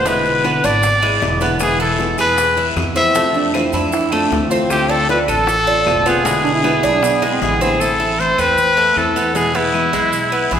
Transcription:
Already playing: upright bass E1
0.05 nylon-string guitar B2 D3 G#3 B3 E4, cuban tres G#3, trumpet B4, high bongo, long guiro, maracas
0.25 high bongo, maracas
0.44 nylon-string guitar B2 D3 G#3 B3 E4, cuban tres B3, high bongo, short guiro, claves, maracas
0.63 upright bass G#1, nylon-string guitar G#3 B3 E4, cuban tres D4, trumpet D5, high bongo, short guiro, maracas
0.83 muted nylon-string guitar stroke, high bongo, long guiro, maracas
1.02 cuban tres G#3, nylon-string guitar G#3 B3 E4, high bongo, claves, maracas
1.21 upright bass E1, nylon-string guitar D3 G#3 B3 E4, high bongo, low bongo, short guiro, maracas
1.41 nylon-string guitar D3 G#3 B3 E4, cuban tres B3, short guiro, maracas
1.59 nylon-string guitar B2 E3 G#3 B3 E4, trumpet G#4, high bongo, long guiro, claves, maracas
1.80 cuban tres E4, trumpet A4, high bongo, maracas
1.99 nylon-string guitar B2 E3 G#3 B3 E4, high bongo, short guiro, maracas
2.18 upright bass E2, nylon-string guitar G#3 B3 E4, cuban tres G#4, trumpet B4, high bongo, short guiro, claves, maracas
2.38 muted nylon-string guitar stroke, high bongo, long guiro, maracas
2.57 nylon-string guitar G#3 B3 E4, cuban tres E4, high bongo, maracas
2.76 upright bass F2, nylon-string guitar E3 G#3 B3 E4, high bongo, low bongo, short guiro, claves, maracas
2.95 nylon-string guitar E3 G#3 B3 E4, cuban tres C4, trumpet E5, short guiro, maracas
3.15 nylon-string guitar C3 A3 C4 F4, cuban tres A3, high bongo, long guiro, maracas
3.34 bass clarinet D4, high bongo, maracas
3.53 nylon-string guitar C3 E3 A3 C4 F4, cuban tres C4, bass clarinet E4, high bongo, short guiro, claves, maracas
3.73 upright bass F2, nylon-string guitar A3 C4 F4, bass clarinet D4, cuban tres E4, high bongo, short guiro, maracas
3.92 bass clarinet E4, muted nylon-string guitar stroke, high bongo, long guiro, maracas
4.12 cuban tres A3, nylon-string guitar A3 C4 F4, bass clarinet D4, high bongo, claves, maracas
4.31 upright bass D2, nylon-string guitar E3 A3 C4 F4, bass clarinet C4, high bongo, low bongo, short guiro, maracas
4.50 nylon-string guitar E3 A3 C4 F4, cuban tres C4, short guiro, maracas
4.70 nylon-string guitar D3 A3 C4 F4, trumpet G4, high bongo, long guiro, claves, maracas
4.89 cuban tres D4, trumpet A4, high bongo, maracas
5.09 nylon-string guitar D3 A3 C4 F4, trumpet B4, high bongo, short guiro, maracas
5.28 upright bass A1, nylon-string guitar A3 C4 F4, cuban tres A4, trumpet A4, high bongo, short guiro, claves, maracas
5.47 muted nylon-string guitar stroke, high bongo, long guiro, maracas
5.67 nylon-string guitar A3 C4 F4, cuban tres D4, high bongo, maracas
5.86 upright bass E1, nylon-string guitar D3 A3 C4 F4, high bongo, low bongo, short guiro, claves, maracas
6.06 nylon-string guitar A3 C4 F4, cuban tres B3, trumpet G#4, short guiro, maracas
6.25 nylon-string guitar B2 D3 G#3 B3 E4, cuban tres G#3, high bongo, long guiro, maracas
6.44 bass clarinet D4, high bongo, maracas
6.54 bass clarinet E4
6.64 nylon-string guitar B2 D3 G#3 B3 E4, cuban tres B3, bass clarinet E4, high bongo, short guiro, claves, maracas
6.83 upright bass B1, nylon-string guitar G#3 B3 E4, cuban tres D4, high bongo, short guiro, maracas
6.93 bass clarinet D4
7.03 bass clarinet B3, muted nylon-string guitar stroke, high bongo, long guiro, maracas
7.22 cuban tres G#3, nylon-string guitar G#3 B3 E4, high bongo, claves, maracas
7.32 bass clarinet C4
7.41 upright bass A1, nylon-string guitar D3 G#3 B3 E4, bass clarinet B3, trumpet G#4, high bongo, low bongo, short guiro, maracas
7.61 nylon-string guitar D3 G#3 B3 E4, cuban tres C4, trumpet G#4, short guiro, maracas
7.80 nylon-string guitar E3 A3 C4 E4, trumpet A4, long guiro, claves, maracas
8.00 nylon-string guitar A3 C4 E4, cuban tres E4, maracas
8.19 nylon-string guitar E3 A3 C4 E4, trumpet C5, short guiro, maracas
8.38 upright bass E2, nylon-string guitar A3 C4 E4, cuban tres C4, trumpet B4, short guiro, claves, maracas
8.58 muted nylon-string guitar stroke, long guiro, maracas
8.77 cuban tres A3, maracas
8.96 upright bass E2, nylon-string guitar E3 A3 C4 E4, trumpet A4, short guiro, claves, maracas
9.15 nylon-string guitar A3 C4 E4, cuban tres B3, short guiro, maracas
9.34 nylon-string guitar B2 E3 G#3 B3 E4, cuban tres G#3, trumpet G#4, long guiro, maracas
9.54 nylon-string guitar G#3 B3 E4, cuban tres B3, trumpet E4, maracas
9.73 nylon-string guitar B2 E3 G#3 B3 E4, short guiro, claves, maracas
9.93 upright bass B1, cuban tres G#3, nylon-string guitar G#3 B3 E4, short guiro, maracas
10.13 muted nylon-string guitar stroke, long guiro, maracas
10.32 cuban tres B3, claves, maracas
10.51 upright bass A1, nylon-string guitar B2 E3 G#3 B3 E4, cuban tres E4, trumpet G#4, short guiro, maracas

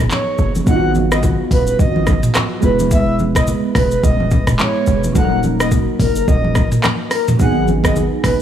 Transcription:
Already playing: synth keys F#3 B3 D#4 G#4
0.10 soft synth lead C#5, clap, high conga, shaker
0.38 808-style bass F#1, shaker
0.55 high conga, shaker
0.64 808-style bass G#1, synth keys F#3 B3 D#4, soft synth lead F#5, kick, low conga, shaker
0.69 synth keys F4
0.76 synth keys F#4
0.95 high conga, shaker
1.12 soft synth lead D#5, cross-stick, shaker
1.23 kick, low conga, shaker
1.51 808-style bass D#1, soft synth lead B4, kick, open hi-hat, low conga, shaker
1.67 soft synth lead B4, shaker
1.79 808-style bass G#1, soft synth lead D#5, kick, shaker
1.96 high conga
2.07 kick, cross-stick, high conga, shaker
2.23 mid tom, shaker
2.35 cross-stick, clap, high conga, shaker
2.61 808-style bass E1, synth keys G#3 B3 E4, soft synth lead B4, shaker
2.66 synth keys B4
2.79 high conga, shaker
2.91 soft synth lead E5, kick, low conga, shaker
3.19 high conga, shaker
3.35 soft synth lead D#5, kick, cross-stick, shaker
3.47 low conga, shaker
3.75 808-style bass E1, soft synth lead B4, kick, cross-stick, open hi-hat, low conga, shaker
3.91 soft synth lead B4, shaker
4.04 808-style bass D#1, soft synth lead D#5, kick, shaker
4.20 high conga
4.31 kick, high conga, shaker
4.47 808-style bass E1, cross-stick, mid tom, shaker
4.58 synth keys G#3 B3 E4 B4, soft synth lead C#5, clap, high conga, shaker
4.87 808-style bass E1, shaker
5.04 high conga, shaker
5.13 808-style bass D#1, synth keys F#3 A#3 D#4, soft synth lead F#5, kick, low conga, shaker
5.18 synth keys A4
5.24 synth keys A#4
5.43 high conga, shaker
5.60 soft synth lead D#5, cross-stick, shaker
5.71 kick, low conga, shaker
6.00 808-style bass F#1, soft synth lead A#4, kick, open hi-hat, low conga, shaker
6.16 soft synth lead A#4, shaker
6.28 808-style bass D#1, soft synth lead D#5, kick, shaker
6.45 high conga
6.55 kick, cross-stick, high conga, shaker
6.72 mid tom, shaker
6.83 cross-stick, clap, high conga, shaker
7.11 soft synth lead A#4, cross-stick, open hi-hat, shaker
7.28 mid tom, high conga, shaker
7.37 808-style bass G#1, synth keys F#3 B3 D#4, soft synth lead F#5, kick, low conga, shaker
7.42 synth keys G#4
7.68 high conga, shaker
7.84 soft synth lead D#5, kick, cross-stick, shaker
7.96 low conga, shaker
8.24 808-style bass F#1, soft synth lead B4, kick, cross-stick, open hi-hat, low conga, shaker

